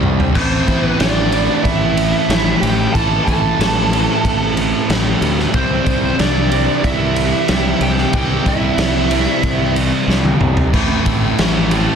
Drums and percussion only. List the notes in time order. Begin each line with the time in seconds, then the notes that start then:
0.03 mid tom
0.20 floor tom
0.35 kick, crash
0.68 kick, ride
1.00 snare, ride
1.32 ride
1.65 kick, ride
1.97 ride
2.30 snare, ride
2.63 ride
2.95 kick, ride
3.28 kick, ride
3.61 snare, ride
3.93 ride
4.25 kick, ride
4.57 ride
4.90 snare, ride
5.22 ride
5.39 snare
5.54 kick, ride
5.86 kick, ride
6.19 snare, ride
6.51 ride
6.84 kick, ride
7.16 ride
7.48 snare, ride
7.81 ride
7.97 snare
8.13 kick, ride
8.46 kick, ride
8.78 snare, ride
9.11 ride
9.43 kick, ride
9.76 ride
10.10 snare
10.25 high tom
10.41 mid tom
10.57 floor tom
10.74 kick, crash
11.06 kick, ride
11.38 snare, ride
11.71 ride